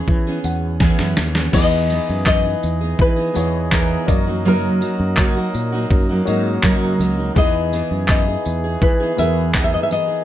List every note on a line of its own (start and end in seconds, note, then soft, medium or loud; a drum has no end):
0.00 0.28 B3 medium
0.00 0.27 C#4 medium
0.00 1.55 C#4 medium
0.00 0.26 G#4 medium
0.00 1.54 G#4 medium
0.00 1.55 B4 medium
0.00 0.59 C#5 medium
0.00 0.77 E5 loud
0.00 1.55 E5 medium
0.08 0.38 E3 loud
0.08 kick loud
0.27 0.80 B3 medium
0.27 0.81 C#4 medium
0.27 0.81 G#4 medium
0.44 0.89 E2 medium
0.44 0.78 F#5 medium
0.44 tambourine medium
0.80 1.17 E3 loud
0.80 1.17 B3 loud
0.80 1.18 C#4 loud
0.80 1.18 G#4 loud
0.80 1.50 G#5 medium
0.80 kick loud
0.80 snare medium
0.99 1.14 F#2 medium
0.99 snare medium
1.17 1.48 D#2 medium
1.17 1.36 E3 medium
1.17 1.36 B3 medium
1.17 1.37 C#4 medium
1.17 snare loud
1.21 1.35 G#4 medium
1.35 1.54 B3 soft
1.35 1.55 C#4 medium
1.35 1.54 G#4 medium
1.35 snare medium
1.52 1.98 E2 medium
1.52 4.06 E3 medium
1.52 1.89 E3 medium
1.52 2.76 B3 medium
1.52 1.90 B3 medium
1.52 2.77 E4 medium
1.52 4.06 G#4 medium
1.52 2.77 G#4 medium
1.52 7.32 D#5 medium
1.52 2.26 D#5 loud
1.52 2.78 D#5 medium
1.52 kick loud
1.52 crash medium
1.56 1.91 D#4 medium
1.56 1.91 G#4 medium
1.90 2.26 E3 medium
1.90 2.26 B3 medium
1.90 2.27 D#4 medium
1.90 2.28 G#4 medium
1.90 tambourine medium
2.09 2.54 F#2 medium
2.26 2.45 E3 medium
2.26 2.45 B3 medium
2.26 2.44 D#4 medium
2.26 2.43 G#4 medium
2.26 2.96 D#5 loud
2.26 kick loud
2.26 clap loud
2.44 2.82 B3 soft
2.44 2.81 D#4 soft
2.44 2.80 G#4 soft
2.63 2.93 E2 medium
2.63 tambourine medium
2.81 3.17 B3 soft
2.81 3.17 D#4 soft
2.81 3.15 G#4 medium
2.99 3.29 E3 loud
2.99 3.73 B4 medium
2.99 kick loud
3.16 3.34 B3 medium
3.16 3.35 D#4 soft
3.16 3.35 G#4 medium
3.34 3.96 E2 medium
3.34 3.71 E3 soft
3.34 4.08 B3 medium
3.34 3.71 B3 soft
3.34 3.71 D#4 medium
3.34 4.08 E4 medium
3.34 4.08 G#4 medium
3.34 3.72 G#4 medium
3.34 4.09 C#5 medium
3.34 tambourine medium
3.72 4.07 E3 medium
3.72 4.08 B3 medium
3.72 4.09 D#4 loud
3.72 4.09 G#4 medium
3.72 4.47 A#4 loud
3.72 kick loud
3.72 clap loud
4.07 4.68 F#2 medium
4.07 4.26 F#3 medium
4.07 7.33 F#3 medium
4.07 4.27 A#3 medium
4.07 5.31 C#4 medium
4.07 4.26 D#4 medium
4.07 5.31 F#4 medium
4.07 4.25 F#4 medium
4.07 5.32 A#4 medium
4.07 7.33 A#4 medium
4.07 4.15 D5 medium
4.07 kick loud
4.07 tambourine medium
4.15 5.35 D#5 medium
4.27 4.44 F#3 soft
4.27 4.45 A#3 soft
4.27 4.45 D#4 soft
4.27 4.45 F#4 medium
4.45 4.81 F#2 medium
4.45 4.81 C#3 medium
4.45 4.79 F#3 medium
4.45 4.81 A#3 medium
4.45 4.81 D#4 medium
4.45 4.82 F#4 medium
4.45 6.97 A#4 medium
4.81 5.17 F#3 medium
4.81 5.18 A#3 medium
4.81 5.18 D#4 medium
4.81 5.18 F#4 medium
4.81 tambourine medium
5.00 5.14 F#2 medium
5.17 5.36 F#2 medium
5.17 5.36 C#3 medium
5.17 5.48 F#3 loud
5.17 5.37 F#3 medium
5.17 5.37 A#3 medium
5.17 5.36 D#4 medium
5.17 5.35 F#4 medium
5.17 kick loud
5.17 clap loud
5.36 5.74 F#3 soft
5.36 5.73 A#3 medium
5.36 5.73 D#4 medium
5.36 5.71 F#4 medium
5.54 5.84 A#2 medium
5.54 tambourine medium
5.72 6.10 F#3 soft
5.72 6.10 A#3 medium
5.72 6.09 D#4 medium
5.72 6.08 F#4 medium
5.91 6.20 F#2 loud
5.91 kick loud
6.09 6.26 F#3 medium
6.09 6.26 A#3 medium
6.09 6.27 D#4 medium
6.09 6.27 F#4 medium
6.25 6.57 G#2 medium
6.25 6.63 F#3 medium
6.25 6.63 A#3 medium
6.25 7.19 C#4 medium
6.25 6.64 D#4 medium
6.25 7.19 F#4 medium
6.25 7.20 A#4 medium
6.25 7.20 D#5 medium
6.25 tambourine medium
6.30 6.64 F#4 medium
6.63 6.93 F#2 loud
6.63 7.00 F#2 medium
6.63 7.00 C#3 medium
6.63 6.99 F#3 loud
6.63 7.00 A#3 loud
6.63 7.00 D#4 loud
6.63 7.01 F#4 loud
6.63 kick loud
6.63 clap loud
6.99 7.29 C#2 medium
6.99 7.18 F#3 medium
6.99 7.19 A#3 medium
6.99 7.18 D#4 medium
6.99 7.16 F#4 medium
6.99 tambourine medium
7.18 7.35 F#3 soft
7.18 7.36 A#3 soft
7.18 7.36 D#4 medium
7.18 7.36 F#4 soft
7.35 7.81 E2 loud
7.35 7.71 E3 medium
7.35 10.24 E3 medium
7.35 8.59 B3 medium
7.35 7.72 B3 medium
7.35 7.73 D#4 medium
7.35 8.59 E4 medium
7.35 8.59 G#4 medium
7.35 10.24 G#4 medium
7.35 7.73 G#4 loud
7.35 8.60 D#5 medium
7.35 8.09 D#5 loud
7.35 kick loud
7.73 8.07 E3 medium
7.73 8.09 B3 medium
7.73 8.09 D#4 medium
7.73 8.10 G#4 medium
7.73 tambourine medium
7.91 8.35 F#2 medium
8.08 8.27 E3 medium
8.08 8.27 B3 medium
8.08 8.28 D#4 medium
8.08 8.27 G#4 medium
8.08 8.84 D#5 medium
8.08 kick loud
8.08 clap loud
8.28 8.65 B3 soft
8.28 8.64 D#4 soft
8.28 8.63 G#4 medium
8.45 8.76 E2 medium
8.45 tambourine medium
8.64 9.01 B3 soft
8.64 9.00 D#4 soft
8.64 8.99 G#4 medium
8.82 9.12 E3 loud
8.82 9.19 B4 medium
8.82 kick loud
9.00 9.19 B3 soft
9.00 9.19 D#4 medium
9.00 9.18 G#4 medium
9.16 9.78 E2 medium
9.16 9.53 E3 medium
9.16 10.10 B3 medium
9.16 9.54 B3 medium
9.16 10.10 E4 medium
9.16 10.10 G#4 medium
9.16 10.10 A#4 medium
9.16 9.54 E5 loud
9.16 tambourine medium
9.22 9.55 G#4 medium
9.54 9.88 E3 medium
9.54 9.90 B3 medium
9.54 9.90 D#4 medium
9.54 9.91 G#4 medium
9.54 9.63 F#5 medium
9.54 kick loud
9.54 clap loud
9.64 9.73 E5 medium
9.74 9.82 D#5 medium
9.83 9.91 E5 medium
9.90 10.08 E3 medium
9.90 10.09 B3 medium
9.90 10.08 D#4 medium
9.90 10.06 G#4 medium
9.90 10.24 D#5 medium
9.90 tambourine medium
10.07 10.24 B3 soft
10.07 10.24 D#4 soft
10.07 10.24 G#4 medium